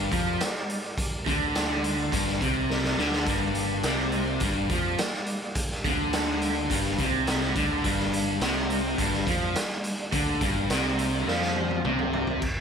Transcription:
0.00 0.11 G2 medium
0.00 0.95 G4 medium
0.00 0.95 A#4 medium
0.00 0.95 D5 medium
0.12 0.39 F2 medium
0.12 0.40 F3 medium
0.12 kick medium
0.12 closed hi-hat medium
0.40 snare loud
0.40 closed hi-hat medium
0.55 snare soft
0.70 closed hi-hat medium
0.98 3.25 G4 medium
0.98 3.25 A#4 medium
0.98 3.25 D5 medium
0.98 kick loud
0.98 closed hi-hat medium
1.26 2.08 D2 medium
1.26 2.12 D3 loud
1.26 kick loud
1.26 closed hi-hat medium
1.55 snare loud
1.55 closed hi-hat medium
1.84 closed hi-hat medium
2.12 2.39 G1 medium
2.12 2.40 G2 medium
2.12 kick loud
2.12 closed hi-hat medium
2.28 snare soft
2.41 2.94 C2 loud
2.41 2.97 C3 medium
2.41 kick medium
2.41 closed hi-hat medium
2.70 snare medium
2.84 snare medium
2.98 3.25 D2 medium
2.98 3.26 D3 loud
2.98 snare medium
3.13 snare medium
3.26 3.80 G1 medium
3.26 3.84 G2 medium
3.26 5.55 A#3 medium
3.26 5.55 G4 medium
3.26 5.55 D5 medium
3.26 kick loud
3.26 closed hi-hat medium
3.55 closed hi-hat medium
3.83 4.37 C2 medium
3.83 4.41 C3 medium
3.83 snare loud
3.83 closed hi-hat medium
4.12 closed hi-hat medium
4.40 4.68 G1 medium
4.40 4.70 G2 medium
4.40 kick loud
4.40 closed hi-hat medium
4.69 4.96 F2 medium
4.69 4.98 F3 medium
4.69 kick medium
4.69 closed hi-hat medium
4.98 snare loud
4.98 closed hi-hat medium
5.13 snare soft
5.26 closed hi-hat medium
5.55 7.83 A#3 medium
5.55 7.83 D4 medium
5.55 7.83 G4 medium
5.55 kick loud
5.55 closed hi-hat medium
5.71 snare soft
5.84 6.66 D2 medium
5.84 6.70 D3 loud
5.84 kick loud
5.84 closed hi-hat medium
6.13 snare loud
6.13 closed hi-hat medium
6.42 closed hi-hat medium
6.70 6.97 G1 loud
6.70 6.98 G2 medium
6.70 kick medium
6.70 closed hi-hat medium
6.86 snare soft
6.98 7.52 C2 medium
6.98 7.55 C3 loud
6.98 kick medium
6.98 closed hi-hat medium
7.27 snare loud
7.27 closed hi-hat medium
7.43 snare soft
7.55 7.82 D2 medium
7.55 7.84 D3 loud
7.55 kick loud
7.55 closed hi-hat medium
7.84 8.38 G1 loud
7.84 8.41 G2 loud
7.84 10.12 G3 medium
7.84 10.11 A#3 medium
7.84 10.11 D4 medium
7.84 kick loud
7.84 closed hi-hat medium
7.99 snare soft
8.13 closed hi-hat medium
8.40 8.94 C2 medium
8.40 8.98 C3 medium
8.40 snare loud
8.40 closed hi-hat medium
8.70 closed hi-hat medium
8.98 9.25 G1 medium
8.98 9.27 G2 loud
8.98 kick medium
8.98 closed hi-hat medium
9.14 snare soft
9.26 9.54 F2 loud
9.26 9.55 F3 medium
9.26 kick medium
9.26 closed hi-hat medium
9.55 snare loud
9.55 closed hi-hat medium
9.71 snare soft
9.84 closed hi-hat medium
10.12 10.40 D2 loud
10.12 10.41 D3 medium
10.12 12.41 G3 medium
10.12 12.41 A#3 medium
10.12 12.40 D4 medium
10.12 kick loud
10.12 closed hi-hat medium
10.41 10.68 G1 loud
10.41 10.70 G2 loud
10.41 kick medium
10.41 closed hi-hat medium
10.70 11.24 C2 medium
10.70 11.27 C3 loud
10.70 snare loud
10.70 closed hi-hat medium
10.99 closed hi-hat medium
11.27 11.81 F2 medium
11.27 11.84 F3 loud
11.27 snare medium
11.42 snare medium
11.56 high tom medium
11.71 high tom medium
11.85 12.38 C2 medium
11.85 12.42 C3 medium
11.85 mid tom medium
11.99 mid tom medium
12.13 floor tom medium
12.27 floor tom medium
12.42 12.61 G1 medium
12.42 kick medium
12.42 crash medium

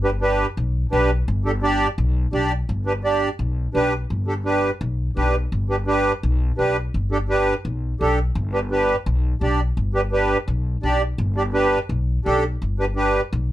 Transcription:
0.00 0.43 G1 loud
0.00 0.10 D4 medium
0.00 0.10 G4 medium
0.04 0.10 B4 loud
0.21 0.46 D4 medium
0.21 0.46 G4 medium
0.21 0.46 B4 loud
0.57 0.85 B1 medium
0.91 1.21 B1 medium
0.91 1.10 D4 medium
0.91 1.10 G4 medium
0.91 1.11 B4 loud
1.28 1.84 G1 loud
1.45 1.51 D4 medium
1.45 1.51 G4 medium
1.45 1.52 A4 medium
1.62 1.87 D4 loud
1.62 1.87 G4 medium
1.62 1.88 D5 loud
1.98 2.26 B1 medium
2.33 2.61 B1 medium
2.33 2.52 D4 medium
2.33 2.52 G4 medium
2.33 2.52 D5 medium
2.69 3.25 G1 medium
2.86 2.92 D4 medium
2.86 2.93 G4 medium
2.86 2.93 B4 medium
3.04 3.29 D4 medium
3.04 3.29 G4 medium
3.04 3.29 D5 medium
3.39 3.68 B1 medium
3.74 4.03 B1 medium
3.74 3.93 D4 medium
3.74 3.93 G4 medium
3.74 3.94 B4 loud
4.10 4.67 G1 medium
4.27 4.34 D4 medium
4.27 4.34 G4 medium
4.27 4.34 A4 medium
4.45 4.70 D4 medium
4.45 4.70 G4 medium
4.45 4.71 B4 medium
4.81 5.09 B1 medium
5.16 5.45 B1 medium
5.16 5.35 D4 medium
5.16 5.35 G4 medium
5.16 5.36 B4 medium
5.52 6.09 G1 medium
5.70 5.76 D4 medium
5.70 5.76 G4 medium
5.70 5.76 B4 medium
5.87 6.12 D4 medium
5.87 6.12 G4 medium
5.87 6.12 B4 loud
6.23 6.51 B1 medium
6.57 6.87 B1 medium
6.57 6.76 D4 medium
6.57 6.77 G4 medium
6.57 6.77 B4 medium
6.94 7.51 G1 medium
7.11 7.18 D4 medium
7.11 7.18 G4 medium
7.11 7.18 A4 medium
7.29 7.54 D4 medium
7.29 7.54 G4 medium
7.29 7.54 B4 loud
7.65 7.93 B1 medium
8.00 8.29 B1 medium
8.00 8.19 D4 medium
8.00 8.19 G4 medium
8.00 8.19 A4 loud
8.35 8.92 G1 medium
8.53 8.59 D4 medium
8.53 8.59 G4 medium
8.53 8.60 B4 medium
8.71 8.96 D4 medium
8.71 8.96 G4 medium
8.71 8.96 B4 medium
9.06 9.35 B1 medium
9.41 9.70 B1 medium
9.41 9.60 D4 medium
9.41 9.60 G4 medium
9.41 9.61 D5 medium
9.77 10.34 G1 medium
9.95 10.01 D4 medium
9.95 10.01 G4 medium
9.95 10.01 B4 medium
10.12 10.37 D4 medium
10.12 10.37 G4 medium
10.12 10.37 B4 medium
10.48 10.76 B1 medium
10.83 11.12 B1 medium
10.83 11.02 D4 medium
10.83 11.02 G4 medium
10.83 11.02 D5 medium
11.18 11.75 G1 medium
11.36 11.43 D4 medium
11.36 11.43 G4 medium
11.36 11.43 D5 medium
11.53 11.79 D4 medium
11.53 11.79 G4 medium
11.53 11.79 B4 loud
11.89 12.18 B1 medium
12.25 12.54 B1 medium
12.25 12.44 D4 medium
12.25 12.44 G4 medium
12.25 12.44 A4 medium
12.62 13.18 G1 medium
12.79 12.85 D4 medium
12.79 12.85 G4 medium
12.79 12.85 B4 medium
12.96 13.21 D4 medium
12.96 13.21 G4 medium
12.96 13.21 B4 medium
13.33 13.52 B1 medium

